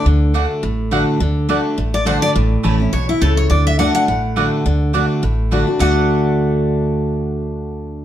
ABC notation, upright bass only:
X:1
M:4/4
L:1/8
Q:"Swing" 1/4=209
K:D
V:1 name="Upright bass" clef=bass
D,,4 A,,,4 | D,,4 A,,,4 | A,,,2 A,,,2 B,,,2 C,,2 | D,,4 A,,,4 |
D,,4 A,,,4 | D,,8- | D,,8 |]